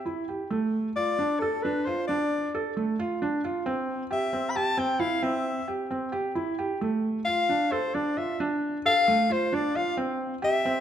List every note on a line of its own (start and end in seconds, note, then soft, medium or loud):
0.06 0.24 E4 medium
0.29 0.47 G4 medium
0.51 0.87 A3 medium
0.96 1.15 F4 medium
0.96 1.41 D5 medium
1.19 1.37 D4 medium
1.39 1.64 A4 medium
1.39 1.60 A4 medium
1.62 1.83 D4 medium
1.62 1.87 B4 medium
1.85 2.05 F4 medium
1.85 2.07 C5 medium
2.08 2.46 D4 medium
2.08 2.56 D5 medium
2.55 2.73 A4 medium
2.77 2.95 A3 medium
2.99 3.17 F4 medium
3.22 3.40 D4 medium
3.44 3.62 F4 medium
3.66 4.02 C4 medium
4.11 4.29 G4 medium
4.11 4.51 E5 medium
4.33 4.51 C4 medium
4.50 4.58 B5 medium
4.55 4.73 G4 medium
4.55 4.80 A5 medium
4.77 4.96 C4 medium
4.77 5.01 G5 medium
5.00 5.18 E4 medium
5.00 5.25 F5 medium
5.23 5.59 C4 medium
5.23 5.73 E5 medium
5.68 5.86 G4 medium
5.91 6.09 C4 medium
6.12 6.31 G4 medium
6.35 6.54 E4 medium
6.59 6.77 G4 medium
6.81 7.18 A3 medium
7.25 7.45 F4 medium
7.25 7.74 F5 loud
7.49 7.68 D4 medium
7.72 7.90 A4 medium
7.72 7.96 C5 medium
7.94 8.13 D4 medium
7.94 8.19 D5 medium
8.17 8.35 F4 medium
8.17 8.40 E5 medium
8.40 8.76 D4 medium
8.86 9.03 A4 medium
8.86 9.34 F5 loud
9.08 9.26 A3 medium
9.30 9.48 F4 medium
9.30 9.56 C5 medium
9.53 9.71 D4 medium
9.53 9.78 D5 medium
9.76 9.93 F4 medium
9.76 9.98 F5 medium
9.97 10.33 C4 medium
10.42 10.60 G4 medium
10.42 10.80 E5 loud
10.65 10.80 C4 medium